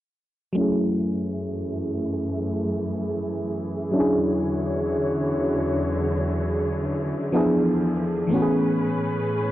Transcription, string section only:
0.57 F#2 E3 A3 G#4
3.96 E2 D3 F#4 C#5
7.35 E2 D3 F3
8.32 A2 C#4 G#4 B4

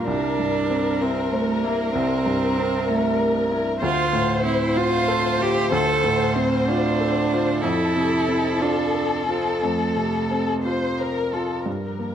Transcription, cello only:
0.07 D4
1.01 C4
1.32 A3
1.63 A#3
1.94 C4
2.88 A3
3.82 F4
4.45 E4
4.77 F4
5.42 G4
5.73 A4
6.36 C4
6.67 D4
7.62 E4
8.61 D4
9.28 C4
9.62 A3
11.67 F3

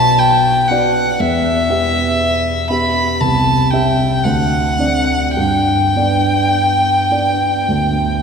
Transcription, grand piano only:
Already playing: B1 B3 F#4 D5
0.71 B3 F#4 D5
1.20 E2
1.70 B3 G4 E5
2.70 B3 G4 E5
3.21 C2
3.73 C4 G4 E5
4.25 D2
4.79 C4 D4 D5
5.37 G2
5.96 B3 D4 D5
7.11 B3 D4 D5
7.68 D2

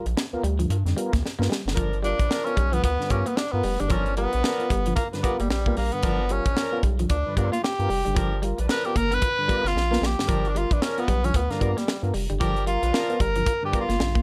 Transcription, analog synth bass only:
0.06 A#1
0.33 D2
0.43 D2
0.70 G2
0.85 F2
1.13 D2
1.39 G2
1.65 F#1
1.77 G1
2.19 A#1
2.57 B1
2.84 D2
3.10 G2
3.53 G2
3.64 F1
3.81 F#1
3.90 G1
4.34 A#1
4.70 G1
5.24 G1
5.40 G1
5.50 A#1
5.77 A#1
6.04 G1
6.46 A#1
6.83 B1
7.10 D2
7.37 G2
7.79 G2
7.90 F1
8.07 F#1
8.16 G1
8.59 A#1
8.96 G1
9.49 G1
9.64 G1
9.75 A#1
10.01 A#1
10.29 G1
10.71 A#1
11.08 B1
11.34 D2
11.61 G2
12.03 G2
12.14 F1
12.30 F#1
12.41 G1
12.82 A#1
13.20 G1
13.73 G1
13.89 G1
13.99 A#1

